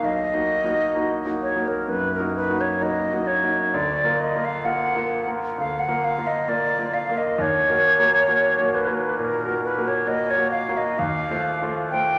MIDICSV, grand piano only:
0, 0, Header, 1, 2, 480
1, 0, Start_track
1, 0, Tempo, 921659
1, 27, Time_signature, 4, 2, 24, 8
1, 3387, Tempo, 896861
1, 5307, Tempo, 913242
1, 6408, End_track
2, 0, Start_track
2, 0, Title_t, "Grand piano"
2, 0, Program_c, 0, 0
2, 0, Control_c, 0, 64, 127
2, 12, Note_on_c, 0, 35, 50
2, 36, Control_c, 0, 64, 0
2, 109, Control_c, 0, 64, 127
2, 175, Note_on_c, 0, 58, 34
2, 176, Note_off_c, 0, 35, 0
2, 177, Note_on_c, 0, 63, 36
2, 179, Note_on_c, 0, 66, 39
2, 325, Note_off_c, 0, 58, 0
2, 328, Note_off_c, 0, 63, 0
2, 329, Note_off_c, 0, 66, 0
2, 333, Note_on_c, 0, 58, 34
2, 338, Note_on_c, 0, 63, 34
2, 341, Note_on_c, 0, 66, 40
2, 485, Note_off_c, 0, 58, 0
2, 489, Note_off_c, 0, 63, 0
2, 490, Note_off_c, 0, 66, 0
2, 492, Note_on_c, 0, 58, 35
2, 498, Note_on_c, 0, 63, 38
2, 499, Note_on_c, 0, 66, 38
2, 645, Note_off_c, 0, 58, 0
2, 645, Note_off_c, 0, 63, 0
2, 649, Note_off_c, 0, 66, 0
2, 653, Note_on_c, 0, 58, 34
2, 653, Note_on_c, 0, 63, 35
2, 659, Note_on_c, 0, 66, 42
2, 804, Note_off_c, 0, 58, 0
2, 805, Note_off_c, 0, 63, 0
2, 806, Note_off_c, 0, 66, 0
2, 812, Note_on_c, 0, 58, 33
2, 814, Note_on_c, 0, 63, 32
2, 814, Note_on_c, 0, 66, 35
2, 964, Note_off_c, 0, 58, 0
2, 965, Note_off_c, 0, 63, 0
2, 965, Note_off_c, 0, 66, 0
2, 978, Note_on_c, 0, 42, 42
2, 1139, Note_off_c, 0, 42, 0
2, 1141, Note_on_c, 0, 58, 35
2, 1143, Note_on_c, 0, 63, 34
2, 1146, Note_on_c, 0, 66, 39
2, 1288, Note_off_c, 0, 58, 0
2, 1292, Note_off_c, 0, 63, 0
2, 1293, Note_off_c, 0, 66, 0
2, 1296, Note_on_c, 0, 58, 34
2, 1301, Note_on_c, 0, 63, 35
2, 1302, Note_on_c, 0, 66, 37
2, 1448, Note_off_c, 0, 58, 0
2, 1451, Note_off_c, 0, 63, 0
2, 1451, Note_off_c, 0, 66, 0
2, 1464, Note_on_c, 0, 58, 39
2, 1464, Note_on_c, 0, 63, 35
2, 1470, Note_on_c, 0, 66, 38
2, 1611, Note_off_c, 0, 63, 0
2, 1612, Note_off_c, 0, 58, 0
2, 1615, Note_off_c, 0, 66, 0
2, 1626, Note_on_c, 0, 58, 34
2, 1631, Note_on_c, 0, 63, 35
2, 1632, Note_on_c, 0, 66, 37
2, 1771, Note_off_c, 0, 58, 0
2, 1774, Note_off_c, 0, 63, 0
2, 1774, Note_off_c, 0, 66, 0
2, 1786, Note_on_c, 0, 58, 34
2, 1788, Note_on_c, 0, 66, 38
2, 1789, Note_on_c, 0, 63, 36
2, 1931, Note_off_c, 0, 58, 0
2, 1932, Note_off_c, 0, 66, 0
2, 1933, Note_off_c, 0, 63, 0
2, 1947, Note_on_c, 0, 38, 51
2, 1958, Control_c, 0, 64, 0
2, 2041, Control_c, 0, 64, 127
2, 2103, Note_off_c, 0, 38, 0
2, 2104, Note_on_c, 0, 58, 40
2, 2107, Note_on_c, 0, 65, 38
2, 2109, Note_on_c, 0, 70, 42
2, 2250, Note_off_c, 0, 58, 0
2, 2252, Note_off_c, 0, 65, 0
2, 2253, Note_off_c, 0, 70, 0
2, 2266, Note_on_c, 0, 58, 36
2, 2269, Note_on_c, 0, 65, 34
2, 2272, Note_on_c, 0, 70, 40
2, 2411, Note_off_c, 0, 58, 0
2, 2413, Note_off_c, 0, 65, 0
2, 2414, Note_off_c, 0, 70, 0
2, 2419, Note_on_c, 0, 58, 35
2, 2423, Note_on_c, 0, 65, 36
2, 2429, Note_on_c, 0, 70, 41
2, 2567, Note_off_c, 0, 58, 0
2, 2569, Note_off_c, 0, 65, 0
2, 2573, Note_off_c, 0, 70, 0
2, 2578, Note_on_c, 0, 58, 37
2, 2583, Note_on_c, 0, 65, 35
2, 2588, Note_on_c, 0, 70, 39
2, 2727, Note_off_c, 0, 58, 0
2, 2729, Note_off_c, 0, 65, 0
2, 2732, Note_off_c, 0, 70, 0
2, 2742, Note_on_c, 0, 58, 32
2, 2743, Note_on_c, 0, 65, 31
2, 2748, Note_on_c, 0, 70, 38
2, 2889, Note_off_c, 0, 58, 0
2, 2889, Note_off_c, 0, 65, 0
2, 2892, Note_off_c, 0, 70, 0
2, 2906, Note_on_c, 0, 38, 40
2, 3063, Note_off_c, 0, 38, 0
2, 3063, Note_on_c, 0, 58, 37
2, 3064, Note_on_c, 0, 65, 36
2, 3066, Note_on_c, 0, 70, 44
2, 3210, Note_off_c, 0, 58, 0
2, 3210, Note_off_c, 0, 65, 0
2, 3211, Note_off_c, 0, 70, 0
2, 3218, Note_on_c, 0, 58, 35
2, 3222, Note_on_c, 0, 70, 41
2, 3223, Note_on_c, 0, 65, 36
2, 3366, Note_off_c, 0, 58, 0
2, 3367, Note_off_c, 0, 70, 0
2, 3368, Note_off_c, 0, 65, 0
2, 3374, Note_on_c, 0, 58, 38
2, 3377, Note_on_c, 0, 65, 37
2, 3377, Note_on_c, 0, 70, 40
2, 3525, Note_off_c, 0, 58, 0
2, 3526, Note_off_c, 0, 65, 0
2, 3527, Note_off_c, 0, 70, 0
2, 3538, Note_on_c, 0, 58, 37
2, 3538, Note_on_c, 0, 65, 38
2, 3542, Note_on_c, 0, 70, 38
2, 3687, Note_off_c, 0, 58, 0
2, 3687, Note_off_c, 0, 65, 0
2, 3689, Note_off_c, 0, 70, 0
2, 3701, Note_on_c, 0, 58, 37
2, 3703, Note_on_c, 0, 65, 37
2, 3709, Note_on_c, 0, 70, 40
2, 3850, Note_off_c, 0, 58, 0
2, 3851, Note_off_c, 0, 65, 0
2, 3855, Note_off_c, 0, 70, 0
2, 3858, Note_on_c, 0, 39, 51
2, 3878, Control_c, 0, 64, 0
2, 3959, Control_c, 0, 64, 127
2, 4022, Note_off_c, 0, 39, 0
2, 4024, Note_on_c, 0, 58, 39
2, 4025, Note_on_c, 0, 66, 39
2, 4025, Note_on_c, 0, 70, 40
2, 4174, Note_off_c, 0, 58, 0
2, 4175, Note_off_c, 0, 66, 0
2, 4175, Note_off_c, 0, 70, 0
2, 4184, Note_on_c, 0, 58, 38
2, 4186, Note_on_c, 0, 70, 38
2, 4187, Note_on_c, 0, 66, 38
2, 4325, Note_off_c, 0, 58, 0
2, 4331, Note_off_c, 0, 66, 0
2, 4333, Note_on_c, 0, 58, 37
2, 4335, Note_off_c, 0, 70, 0
2, 4339, Note_on_c, 0, 66, 39
2, 4344, Note_on_c, 0, 70, 39
2, 4487, Note_off_c, 0, 58, 0
2, 4490, Note_off_c, 0, 66, 0
2, 4493, Note_off_c, 0, 70, 0
2, 4503, Note_on_c, 0, 58, 40
2, 4504, Note_on_c, 0, 66, 42
2, 4505, Note_on_c, 0, 70, 40
2, 4644, Note_off_c, 0, 58, 0
2, 4648, Note_off_c, 0, 66, 0
2, 4650, Note_off_c, 0, 70, 0
2, 4652, Note_on_c, 0, 58, 34
2, 4656, Note_on_c, 0, 66, 35
2, 4658, Note_on_c, 0, 70, 37
2, 4802, Note_off_c, 0, 58, 0
2, 4804, Note_off_c, 0, 66, 0
2, 4805, Note_off_c, 0, 70, 0
2, 4814, Note_on_c, 0, 46, 42
2, 4968, Note_on_c, 0, 58, 39
2, 4968, Note_on_c, 0, 66, 40
2, 4973, Note_on_c, 0, 70, 45
2, 4974, Note_off_c, 0, 46, 0
2, 5120, Note_off_c, 0, 58, 0
2, 5120, Note_off_c, 0, 66, 0
2, 5122, Note_off_c, 0, 70, 0
2, 5141, Note_on_c, 0, 58, 38
2, 5143, Note_on_c, 0, 66, 36
2, 5144, Note_on_c, 0, 70, 40
2, 5287, Note_off_c, 0, 58, 0
2, 5288, Note_off_c, 0, 66, 0
2, 5289, Note_off_c, 0, 70, 0
2, 5295, Note_on_c, 0, 58, 41
2, 5296, Note_on_c, 0, 66, 38
2, 5300, Note_on_c, 0, 70, 40
2, 5442, Note_off_c, 0, 58, 0
2, 5443, Note_off_c, 0, 66, 0
2, 5445, Note_off_c, 0, 70, 0
2, 5458, Note_on_c, 0, 58, 36
2, 5459, Note_on_c, 0, 66, 39
2, 5464, Note_on_c, 0, 70, 42
2, 5602, Note_off_c, 0, 58, 0
2, 5603, Note_off_c, 0, 66, 0
2, 5606, Note_off_c, 0, 70, 0
2, 5620, Note_on_c, 0, 66, 42
2, 5621, Note_on_c, 0, 58, 39
2, 5623, Note_on_c, 0, 70, 43
2, 5764, Note_off_c, 0, 66, 0
2, 5765, Note_off_c, 0, 58, 0
2, 5766, Note_off_c, 0, 70, 0
2, 5779, Note_on_c, 0, 39, 60
2, 5791, Control_c, 0, 64, 0
2, 5868, Control_c, 0, 64, 127
2, 5937, Note_off_c, 0, 39, 0
2, 5943, Note_on_c, 0, 57, 42
2, 5947, Note_on_c, 0, 65, 43
2, 5948, Note_on_c, 0, 72, 46
2, 6088, Note_off_c, 0, 57, 0
2, 6090, Note_off_c, 0, 65, 0
2, 6091, Note_off_c, 0, 72, 0
2, 6109, Note_on_c, 0, 65, 35
2, 6111, Note_on_c, 0, 57, 42
2, 6115, Note_on_c, 0, 72, 44
2, 6252, Note_off_c, 0, 65, 0
2, 6253, Note_off_c, 0, 57, 0
2, 6255, Note_off_c, 0, 72, 0
2, 6270, Note_on_c, 0, 57, 37
2, 6277, Note_on_c, 0, 65, 35
2, 6277, Note_on_c, 0, 72, 43
2, 6408, Note_off_c, 0, 57, 0
2, 6408, Note_off_c, 0, 65, 0
2, 6408, Note_off_c, 0, 72, 0
2, 6408, End_track
0, 0, End_of_file